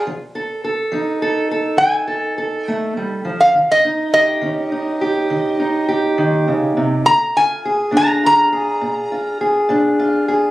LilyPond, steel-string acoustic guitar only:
\new Staff \with { instrumentName = "Steel-string acoustic guitar" } { \time 12/8 \key f \dorian \tempo 4. = 69 << { r8 a'8 a'8 ees'8 a'8 a'4 a'8 a'2 | r8 ees'8 g'8 des'8 ees'8 g'4 ees'8 g'2 | r8 f'8 aes'8 d'8 f'8 aes'4 f'8 aes'8 d'8 f'8 aes'8 | } \\ { f4 r8 f4 r8 f4 r8 a8 g8 f8 | ees4 r8 ees4 r8 ees4 r8 ees8 des8 c8 | bes,4 r8 bes,4 r8 bes,4 r8 bes,4 r8 | } >> }